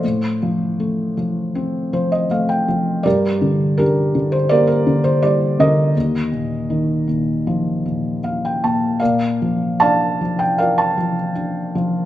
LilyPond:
<<
  \new Staff \with { instrumentName = "Felt piano" } { \time 4/4 \key g \minor \tempo 4 = 79 << { c''8 r2 c''16 ees''16 f''16 g''8. | d''4 bes'8. c''16 d''16 bes'8 c''16 d''8 ees''8~ | ees''8 r2 r8 f''16 g''16 a''8 | f''4 a''8. g''16 f''16 a''8 r4 r16 | } \\ { <f' a'>4. r2 r8 | <g' bes'>4 <d' g'>4 <g' bes'>4. bes'8~ | bes'4. r2 r8 | <bes' d''>4 <d'' f''>4 <bes' d''>2 | } >> }
  \new Staff \with { instrumentName = "Felt piano" } { \clef bass \time 4/4 \key g \minor a,8 f8 a8 f8 c'8 f8 a8 f8 | g,8 d8 g8 d8 bes8 d8 g8 d8 | ees,8 bes,8 ees8 bes,8 f8 bes,8 bes8 bes,8 | bes,8 f8 d'8 f8 f'8 f8 d'8 f8 | }
>>